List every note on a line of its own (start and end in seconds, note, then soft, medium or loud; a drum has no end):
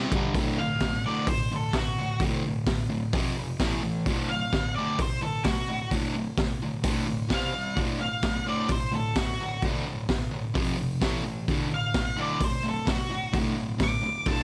0.00 0.12 C3 loud
0.00 0.13 G3 loud
0.00 0.13 C4 loud
0.12 0.36 G2 loud
0.12 0.36 D3 loud
0.12 0.36 G3 loud
0.12 kick loud
0.12 ride medium
0.35 0.58 D2 medium
0.35 0.58 A2 medium
0.35 kick loud
0.35 open hi-hat medium
0.39 0.59 D3 medium
0.59 0.80 D2 medium
0.59 0.80 A2 medium
0.59 1.04 F5 loud
0.80 1.04 D2 medium
0.80 1.04 A2 medium
0.80 kick medium
0.80 snare loud
0.80 open hi-hat medium
1.06 1.27 D2 medium
1.06 1.27 A2 medium
1.06 1.28 D3 loud
1.06 1.28 D5 medium
1.27 1.49 D2 medium
1.27 1.49 A2 medium
1.27 1.51 C5 medium
1.27 kick loud
1.27 open hi-hat medium
1.52 1.72 D2 medium
1.52 1.73 A2 medium
1.52 1.76 A4 medium
1.73 1.96 D2 medium
1.73 1.96 A2 medium
1.73 kick loud
1.73 snare loud
1.73 open hi-hat medium
1.77 2.21 F#4 medium
1.98 2.19 D2 medium
1.98 2.19 A2 medium
2.20 2.42 D2 medium
2.20 2.43 A2 medium
2.20 2.43 D3 medium
2.20 kick loud
2.20 open hi-hat soft
2.46 2.66 D2 medium
2.46 2.66 A2 medium
2.66 2.88 D2 medium
2.66 2.88 A2 medium
2.66 kick loud
2.66 snare loud
2.66 open hi-hat medium
2.90 3.11 D2 medium
2.90 3.11 A2 medium
3.13 3.35 F2 medium
3.13 3.36 C3 medium
3.13 3.36 F3 loud
3.13 kick loud
3.13 open hi-hat medium
3.37 3.58 F2 medium
3.37 3.58 C3 medium
3.60 3.82 A2 medium
3.60 3.81 E3 loud
3.60 3.82 A3 loud
3.60 kick loud
3.60 snare loud
3.60 open hi-hat medium
3.83 4.04 A2 medium
3.83 4.04 E3 medium
4.06 4.28 D2 medium
4.06 4.29 A2 medium
4.06 4.30 D3 medium
4.06 kick loud
4.06 open hi-hat medium
4.29 4.51 D2 medium
4.29 4.51 A2 medium
4.29 4.74 F5 medium
4.53 4.74 D2 medium
4.53 4.74 A2 medium
4.53 kick loud
4.53 snare medium
4.53 open hi-hat soft
4.76 4.98 D2 medium
4.76 4.99 A2 medium
4.76 4.99 D3 loud
4.76 4.98 D5 medium
4.99 5.20 D2 medium
4.99 5.20 A2 loud
4.99 5.22 C5 medium
4.99 kick loud
4.99 open hi-hat medium
5.21 5.43 D2 medium
5.21 5.43 A2 medium
5.21 5.45 A4 medium
5.44 5.65 D2 medium
5.44 5.66 A2 medium
5.44 5.89 F#4 loud
5.44 kick loud
5.44 snare loud
5.44 open hi-hat medium
5.68 5.89 D2 medium
5.68 5.90 A2 medium
5.91 6.13 D2 medium
5.91 6.14 A2 medium
5.91 6.14 D3 loud
5.91 kick medium
5.91 open hi-hat medium
6.15 6.36 D2 medium
6.15 6.36 A2 medium
6.37 6.59 D2 medium
6.37 6.60 A2 loud
6.37 kick loud
6.37 snare loud
6.37 open hi-hat medium
6.62 6.82 D2 medium
6.62 6.82 A2 medium
6.83 7.05 D2 medium
6.83 7.06 A2 medium
6.83 7.06 D3 loud
6.83 kick loud
6.83 open hi-hat medium
7.07 7.28 D2 medium
7.07 7.28 A2 medium
7.29 7.52 C3 loud
7.29 7.52 G3 loud
7.29 7.53 C4 loud
7.29 kick loud
7.29 snare loud
7.29 open hi-hat medium
7.33 7.77 F5 loud
7.55 7.75 C3 medium
7.55 7.75 G3 medium
7.76 7.98 D2 medium
7.76 7.99 A2 medium
7.76 7.99 D3 medium
7.76 kick medium
7.76 open hi-hat medium
7.99 8.21 D2 medium
7.99 8.21 A2 medium
7.99 8.46 F5 medium
8.22 8.44 D2 medium
8.22 8.45 A2 medium
8.22 kick loud
8.22 snare loud
8.22 open hi-hat medium
8.46 8.68 D2 medium
8.46 8.69 A2 loud
8.46 8.69 D3 loud
8.46 8.70 D5 medium
8.68 8.90 D2 medium
8.68 8.91 A2 medium
8.68 8.93 C5 medium
8.68 kick loud
8.68 open hi-hat medium
8.92 9.13 D2 medium
8.92 9.14 A2 medium
8.92 9.17 A4 medium
9.15 9.37 D2 medium
9.15 9.37 A2 medium
9.15 9.62 F#4 loud
9.15 kick loud
9.15 snare loud
9.15 open hi-hat medium
9.40 9.61 D2 medium
9.40 9.61 A2 medium
9.62 9.85 D2 medium
9.62 9.85 A2 medium
9.62 9.86 D3 loud
9.62 kick medium
9.62 open hi-hat medium
9.88 10.08 D2 medium
9.88 10.08 A2 medium
10.09 10.30 D2 medium
10.09 10.30 A2 medium
10.09 kick loud
10.09 snare loud
10.09 open hi-hat soft
10.31 10.53 D2 medium
10.31 10.53 A2 medium
10.54 10.76 F2 medium
10.54 10.76 C3 medium
10.54 10.78 F3 medium
10.54 kick loud
10.54 open hi-hat medium
10.77 10.99 F2 medium
10.77 10.99 C3 medium
11.01 11.23 A2 medium
11.01 11.23 E3 loud
11.01 11.24 A3 loud
11.01 kick loud
11.01 snare loud
11.01 open hi-hat medium
11.24 11.45 A2 medium
11.24 11.45 E3 medium
11.48 11.69 D2 medium
11.48 11.69 A2 medium
11.48 11.70 D3 medium
11.48 kick loud
11.48 open hi-hat medium
11.70 11.91 D2 medium
11.70 11.92 A2 medium
11.74 12.18 F5 medium
11.94 12.15 D2 medium
11.94 12.16 A2 loud
11.94 kick loud
11.94 snare loud
11.94 open hi-hat medium
12.16 12.39 D2 medium
12.16 12.39 A2 medium
12.16 12.40 D3 loud
12.21 12.42 D5 loud
12.41 12.62 D2 medium
12.41 12.62 A2 medium
12.41 12.65 C5 medium
12.41 kick loud
12.41 open hi-hat medium
12.63 12.84 D2 medium
12.63 12.85 A2 medium
12.69 12.89 A4 medium
12.85 13.07 D2 medium
12.85 13.08 A2 medium
12.85 kick loud
12.85 snare loud
12.85 open hi-hat medium
12.90 13.33 F#4 loud
13.10 13.31 D2 medium
13.10 13.31 A2 medium
13.33 13.54 D2 medium
13.33 13.55 A2 medium
13.33 13.56 D3 medium
13.33 kick loud
13.33 open hi-hat medium
13.56 13.77 D2 medium
13.56 13.77 A2 medium
13.78 14.00 D2 medium
13.78 14.00 A2 medium
13.78 kick loud
13.78 snare loud
13.78 open hi-hat medium
13.83 14.27 D6 medium
14.01 14.23 D2 medium
14.01 14.24 A2 medium
14.25 14.43 D2 medium
14.25 14.43 A2 medium
14.25 14.43 D3 loud
14.25 14.43 A5 loud
14.25 kick loud
14.25 open hi-hat medium